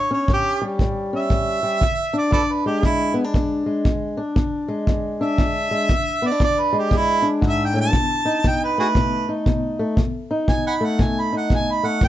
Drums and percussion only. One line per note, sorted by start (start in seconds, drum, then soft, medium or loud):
0.28 kick medium
0.79 kick medium
1.30 kick medium
1.81 kick medium
2.32 kick medium
2.83 kick medium
3.34 kick medium
3.85 kick medium
4.36 kick medium
4.87 kick medium
5.38 kick medium
5.89 kick medium
6.40 kick medium
6.91 kick medium
7.42 kick medium
7.93 kick medium
8.44 kick medium
8.95 kick medium
9.46 kick medium
9.97 kick medium
10.48 kick medium
10.99 kick medium
11.50 kick medium
12.01 kick medium